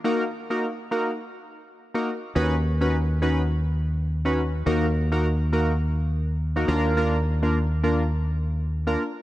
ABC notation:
X:1
M:4/4
L:1/16
Q:"Swing 16ths" 1/4=104
K:Ebm
V:1 name="Synth keys"
[B,EGB] z2 [B,EGB] z2 [B,EGB] z6 [B,EGB] z2 | [^C^D^F=B] z2 [CDFB] z2 [CDFB] z6 [CDFB] z2 | [B,EGB] z2 [B,EGB] z2 [B,EGB] z6 [B,EGB] [B,=DFB]2 | [B,=DFB] z2 [B,DFB] z2 [B,DFB] z6 [B,DFB] z2 |]
V:2 name="Fingered electric bass" clef=bass
z16 | ^D,,16 | E,,12- E,,2 E,,2- | E,,12- E,,2 z2 |]